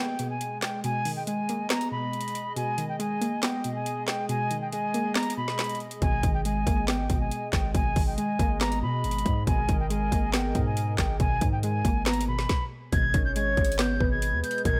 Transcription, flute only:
0, 0, Header, 1, 2, 480
1, 0, Start_track
1, 0, Key_signature, 5, "minor"
1, 0, Tempo, 431655
1, 933, Time_signature, 4, 2, 24, 8
1, 16456, End_track
2, 0, Start_track
2, 0, Title_t, "Flute"
2, 0, Program_c, 0, 73
2, 0, Note_on_c, 0, 79, 82
2, 312, Note_off_c, 0, 79, 0
2, 336, Note_on_c, 0, 80, 75
2, 673, Note_off_c, 0, 80, 0
2, 695, Note_on_c, 0, 79, 82
2, 897, Note_off_c, 0, 79, 0
2, 936, Note_on_c, 0, 80, 111
2, 1273, Note_off_c, 0, 80, 0
2, 1294, Note_on_c, 0, 79, 73
2, 1395, Note_off_c, 0, 79, 0
2, 1414, Note_on_c, 0, 80, 90
2, 1865, Note_off_c, 0, 80, 0
2, 1893, Note_on_c, 0, 82, 92
2, 2097, Note_off_c, 0, 82, 0
2, 2134, Note_on_c, 0, 83, 80
2, 2810, Note_off_c, 0, 83, 0
2, 2853, Note_on_c, 0, 80, 99
2, 3191, Note_off_c, 0, 80, 0
2, 3213, Note_on_c, 0, 79, 77
2, 3315, Note_off_c, 0, 79, 0
2, 3335, Note_on_c, 0, 80, 82
2, 3785, Note_off_c, 0, 80, 0
2, 3813, Note_on_c, 0, 79, 78
2, 4152, Note_off_c, 0, 79, 0
2, 4172, Note_on_c, 0, 80, 76
2, 4511, Note_off_c, 0, 80, 0
2, 4533, Note_on_c, 0, 79, 80
2, 4736, Note_off_c, 0, 79, 0
2, 4774, Note_on_c, 0, 80, 109
2, 5112, Note_off_c, 0, 80, 0
2, 5133, Note_on_c, 0, 79, 72
2, 5235, Note_off_c, 0, 79, 0
2, 5254, Note_on_c, 0, 80, 93
2, 5705, Note_off_c, 0, 80, 0
2, 5733, Note_on_c, 0, 82, 90
2, 5937, Note_off_c, 0, 82, 0
2, 5973, Note_on_c, 0, 83, 80
2, 6440, Note_off_c, 0, 83, 0
2, 6692, Note_on_c, 0, 80, 101
2, 7031, Note_off_c, 0, 80, 0
2, 7052, Note_on_c, 0, 79, 85
2, 7154, Note_off_c, 0, 79, 0
2, 7174, Note_on_c, 0, 80, 85
2, 7625, Note_off_c, 0, 80, 0
2, 7652, Note_on_c, 0, 79, 83
2, 7991, Note_off_c, 0, 79, 0
2, 8014, Note_on_c, 0, 80, 73
2, 8352, Note_off_c, 0, 80, 0
2, 8374, Note_on_c, 0, 79, 82
2, 8577, Note_off_c, 0, 79, 0
2, 8615, Note_on_c, 0, 80, 112
2, 8952, Note_off_c, 0, 80, 0
2, 8975, Note_on_c, 0, 79, 72
2, 9076, Note_off_c, 0, 79, 0
2, 9094, Note_on_c, 0, 80, 88
2, 9545, Note_off_c, 0, 80, 0
2, 9574, Note_on_c, 0, 82, 94
2, 9777, Note_off_c, 0, 82, 0
2, 9815, Note_on_c, 0, 83, 84
2, 10491, Note_off_c, 0, 83, 0
2, 10532, Note_on_c, 0, 80, 102
2, 10871, Note_off_c, 0, 80, 0
2, 10895, Note_on_c, 0, 79, 76
2, 10996, Note_off_c, 0, 79, 0
2, 11015, Note_on_c, 0, 80, 84
2, 11465, Note_off_c, 0, 80, 0
2, 11494, Note_on_c, 0, 79, 80
2, 11832, Note_off_c, 0, 79, 0
2, 11854, Note_on_c, 0, 80, 74
2, 12192, Note_off_c, 0, 80, 0
2, 12212, Note_on_c, 0, 79, 81
2, 12416, Note_off_c, 0, 79, 0
2, 12453, Note_on_c, 0, 80, 109
2, 12792, Note_off_c, 0, 80, 0
2, 12813, Note_on_c, 0, 79, 69
2, 12915, Note_off_c, 0, 79, 0
2, 12934, Note_on_c, 0, 80, 92
2, 13385, Note_off_c, 0, 80, 0
2, 13415, Note_on_c, 0, 82, 90
2, 13618, Note_off_c, 0, 82, 0
2, 13655, Note_on_c, 0, 83, 82
2, 14060, Note_off_c, 0, 83, 0
2, 14373, Note_on_c, 0, 92, 104
2, 14711, Note_off_c, 0, 92, 0
2, 14735, Note_on_c, 0, 91, 88
2, 14836, Note_off_c, 0, 91, 0
2, 14856, Note_on_c, 0, 92, 88
2, 15306, Note_off_c, 0, 92, 0
2, 15333, Note_on_c, 0, 91, 86
2, 15672, Note_off_c, 0, 91, 0
2, 15695, Note_on_c, 0, 92, 75
2, 16032, Note_off_c, 0, 92, 0
2, 16054, Note_on_c, 0, 91, 84
2, 16257, Note_off_c, 0, 91, 0
2, 16296, Note_on_c, 0, 92, 111
2, 16456, Note_off_c, 0, 92, 0
2, 16456, End_track
0, 0, End_of_file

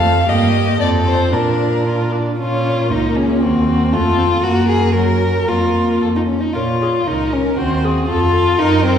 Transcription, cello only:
0, 0, Header, 1, 2, 480
1, 0, Start_track
1, 0, Key_signature, -5, "minor"
1, 0, Tempo, 523560
1, 268, Time_signature, 2, 2, 24, 8
1, 2194, Tempo, 512821
1, 4594, Tempo, 529101
1, 6514, Tempo, 510638
1, 8311, End_track
2, 0, Start_track
2, 0, Title_t, "Cello"
2, 0, Program_c, 0, 42
2, 0, Note_on_c, 0, 41, 59
2, 260, Note_off_c, 0, 41, 0
2, 266, Note_on_c, 0, 43, 60
2, 730, Note_off_c, 0, 43, 0
2, 743, Note_on_c, 0, 41, 60
2, 1224, Note_on_c, 0, 46, 48
2, 1238, Note_off_c, 0, 41, 0
2, 2009, Note_off_c, 0, 46, 0
2, 2212, Note_on_c, 0, 46, 41
2, 2689, Note_on_c, 0, 37, 46
2, 2703, Note_off_c, 0, 46, 0
2, 3166, Note_on_c, 0, 39, 51
2, 3180, Note_off_c, 0, 37, 0
2, 3636, Note_on_c, 0, 41, 52
2, 3651, Note_off_c, 0, 39, 0
2, 4106, Note_off_c, 0, 41, 0
2, 4112, Note_on_c, 0, 42, 51
2, 5040, Note_off_c, 0, 42, 0
2, 5079, Note_on_c, 0, 41, 38
2, 5550, Note_off_c, 0, 41, 0
2, 5561, Note_on_c, 0, 41, 38
2, 5851, Note_off_c, 0, 41, 0
2, 6036, Note_on_c, 0, 46, 42
2, 6457, Note_off_c, 0, 46, 0
2, 6517, Note_on_c, 0, 37, 46
2, 6942, Note_off_c, 0, 37, 0
2, 6997, Note_on_c, 0, 39, 49
2, 7420, Note_off_c, 0, 39, 0
2, 7480, Note_on_c, 0, 41, 52
2, 7898, Note_off_c, 0, 41, 0
2, 7958, Note_on_c, 0, 42, 63
2, 8311, Note_off_c, 0, 42, 0
2, 8311, End_track
0, 0, End_of_file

